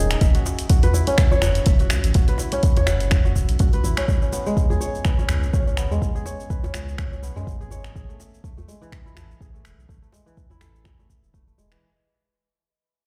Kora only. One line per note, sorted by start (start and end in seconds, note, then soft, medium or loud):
0.00 0.26 D#3 loud
0.00 1.07 C#4 loud
0.00 0.27 D#4 medium
0.00 0.22 F#4 medium
0.00 1.33 G#4 loud
0.21 1.25 E5 medium
0.35 0.69 F#4 medium
0.69 1.80 F#4 medium
0.83 2.06 B4 loud
0.94 2.39 E4 medium
1.07 2.52 C#4 loud
1.31 2.46 C#5 loud
1.42 2.39 F#5 loud
1.66 2.70 E5 medium
1.80 2.14 F#4 medium
2.15 3.24 F#4 medium
2.28 3.51 B4 medium
2.39 3.84 E4 medium
2.52 3.97 C#4 loud
2.77 3.92 C#5 loud
2.87 3.84 F#5 loud
3.11 4.15 E5 medium
3.25 3.59 F#4 medium
3.60 5.06 F#4 medium
3.73 4.96 B4 loud
3.84 5.41 E4 medium
3.97 4.08 C#4 loud
4.08 4.22 C#4 medium
4.22 5.18 C#4 medium
4.32 5.77 B3 medium
4.46 5.90 G#3 medium
4.70 6.06 G#4 loud
4.81 5.95 C#5 loud
5.05 6.28 B4 medium
5.18 5.53 C#4 medium
5.53 5.67 C#4 medium
5.67 6.63 C#4 medium
5.77 7.22 B3 medium
5.91 7.35 G#3 loud
6.15 7.52 G#4 medium
6.26 7.40 C#5 medium
6.50 7.73 B4 medium
6.64 6.98 C#4 medium
6.99 7.11 C#4 medium
7.12 8.86 C#4 medium
7.23 9.09 B3 medium
7.36 8.00 G#3 loud
7.61 7.95 G#4 medium
7.71 8.86 C#5 medium
7.95 8.15 G#4 medium
8.09 8.43 A3 medium
8.44 8.57 A3 medium
8.57 8.74 A3 medium
8.68 10.11 G#3 medium
8.81 10.25 E3 loud
9.06 10.50 E4 loud
9.16 9.46 A4 medium
9.40 9.60 G#4 medium
9.54 9.88 A3 medium
9.88 10.02 A3 medium
10.02 10.19 A3 medium
10.13 11.57 G#3 medium
10.26 11.70 E3 medium
10.50 12.07 E4 loud
10.61 10.91 A4 medium
10.85 11.05 G#4 medium
10.99 11.33 A3 medium
11.34 11.47 A3 medium
11.47 11.64 A3 medium
11.58 11.87 G#3 medium
11.71 11.87 E3 medium